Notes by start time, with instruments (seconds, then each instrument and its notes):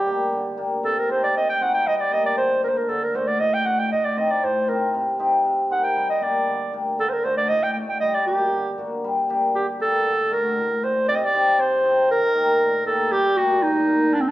Already playing: hammered dulcimer G3, clarinet G4
0.06 hammered dulcimer A#3 D4 G4
0.32 hammered dulcimer D3
0.57 hammered dulcimer A#3 D4 G4
0.83 hammered dulcimer C3, clarinet A4
0.98 clarinet A#4
1.09 hammered dulcimer C4 D#4 G4, clarinet C5
1.23 clarinet D5
1.36 hammered dulcimer C3, clarinet D#5
1.49 clarinet G5
1.61 hammered dulcimer C4 D#4 F#4, clarinet F#5
1.74 clarinet G5
1.86 hammered dulcimer G3, clarinet D#5
1.97 clarinet D5 D#5
2.11 hammered dulcimer A#3 D4 G4, clarinet D#5
2.26 clarinet D5
2.37 hammered dulcimer D3, clarinet C5
2.63 hammered dulcimer A#3 D4 A4, clarinet A#4
2.69 clarinet C5
2.77 clarinet A#4
2.89 hammered dulcimer D3, clarinet A4
3.03 clarinet A#4
3.14 hammered dulcimer A3 D4 F#4, clarinet C5
3.27 clarinet D5
3.39 hammered dulcimer A2, clarinet D#5
3.54 clarinet G5
3.65 hammered dulcimer A3 D4 F#4, clarinet F#5
3.79 clarinet G5
3.92 hammered dulcimer A2, clarinet D#5
4.05 clarinet D5
4.17 hammered dulcimer C4 D#4 A4, clarinet D#5
4.30 clarinet D5
4.43 hammered dulcimer A2, clarinet C5
4.68 hammered dulcimer C4 D#4 C5, clarinet A#4
4.94 hammered dulcimer C3
5.19 hammered dulcimer C4 D#4 G4
5.45 hammered dulcimer C3
5.70 hammered dulcimer C4 D#4 A#4, clarinet F#5
5.84 clarinet G5
5.96 hammered dulcimer G3
6.09 clarinet D#5
6.21 hammered dulcimer A#3 D4 G4, clarinet D5
6.48 hammered dulcimer D3
6.73 hammered dulcimer A#3 D4 G4
6.99 hammered dulcimer D3, clarinet A4
7.09 clarinet A#4 C5
7.24 hammered dulcimer A3 D4 F#4, clarinet C5
7.37 clarinet D5
7.49 hammered dulcimer A2, clarinet D#5
7.63 clarinet G5
7.73 hammered dulcimer A3, clarinet G5
7.77 hammered dulcimer D4 F#4
7.89 clarinet G5
8.00 hammered dulcimer G3, clarinet D#5
8.15 clarinet D5
8.27 hammered dulcimer A#3 D4 G4, clarinet G4
8.53 hammered dulcimer D3
8.78 hammered dulcimer A#3 D4 F#4
9.04 hammered dulcimer G3
9.29 hammered dulcimer A#3 D4 G4
9.55 hammered dulcimer D3, clarinet G4
9.80 hammered dulcimer A#3 D4 G4, clarinet A4
10.06 hammered dulcimer D3
10.31 hammered dulcimer A3 D4 F#4, clarinet A#4
10.57 hammered dulcimer A2
10.83 hammered dulcimer A3 D4 A4, clarinet C5
11.08 hammered dulcimer C3, clarinet D5
11.15 clarinet D#5
11.24 clarinet D5
11.34 hammered dulcimer C4 D#4 G4
11.59 hammered dulcimer C3, clarinet C5
11.84 hammered dulcimer C4 D#4 G4
12.10 hammered dulcimer D#3, clarinet A#4
12.35 hammered dulcimer A#3 D#4 G4
12.61 hammered dulcimer A#2
12.86 hammered dulcimer A#3 D#4 G4, clarinet A4
13.11 hammered dulcimer G3, clarinet G4
13.36 hammered dulcimer A#3 D4 G4, clarinet F#4
13.62 hammered dulcimer A#2, clarinet D#4
13.87 hammered dulcimer A#3 D4 A#4
14.12 hammered dulcimer D3, clarinet D4
14.20 clarinet C4
14.28 clarinet D4